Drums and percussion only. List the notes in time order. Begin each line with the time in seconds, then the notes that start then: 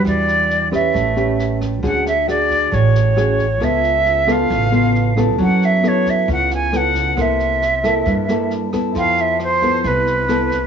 0.05 kick, cross-stick, snare
0.28 snare
0.50 snare
0.72 kick, cross-stick, snare
0.94 kick, snare
1.17 snare
1.39 snare
1.61 kick, cross-stick, snare
1.83 kick, snare
2.06 snare
2.28 cross-stick, snare
2.50 kick, snare
2.72 kick, snare
2.95 snare
3.17 cross-stick, snare
3.39 kick, snare
3.61 kick, cross-stick, snare
3.84 snare
4.06 snare
4.28 kick, cross-stick, snare
4.50 kick, snare
4.72 snare
4.95 snare
5.17 kick, cross-stick, snare
5.39 kick, snare
5.62 snare
5.84 cross-stick, snare
6.06 kick, snare
6.28 kick, snare
6.51 snare
6.73 cross-stick, snare
6.95 kick, snare
7.17 kick, cross-stick, snare
7.40 snare
7.62 snare
7.84 kick, cross-stick, snare
8.06 kick, snare
8.28 snare
8.51 snare
8.73 kick, cross-stick, snare
8.95 kick, snare
9.17 snare
9.40 cross-stick, snare
9.62 kick, snare
9.84 kick, snare
10.07 snare
10.28 cross-stick, snare
10.51 kick, snare